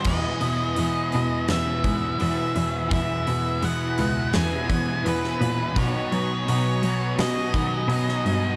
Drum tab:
CC |x---------------|----------------|----------------|
HH |--o-o-o-o-o-o-o-|o-o-o-o-o-o-o-o-|o-o-o-o-o-o-o-o-|
SD |--------o-------|--------o----o--|--------o----o--|
BD |o---------o-----|o---------o-----|o---------o-----|